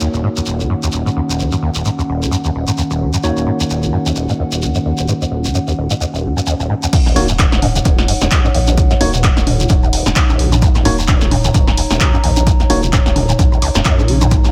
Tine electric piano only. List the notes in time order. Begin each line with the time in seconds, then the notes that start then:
Already playing: A#3 D#4 F#4 C#5
3.24 A#3 D#4 F#4 C#5
7.16 A#3 D#4 F#4 C#5
9.01 A#3 D#4 F#4 C#5
10.85 A#3 D#4 F#4 C#5
12.70 A#3 D#4 F#4 C#5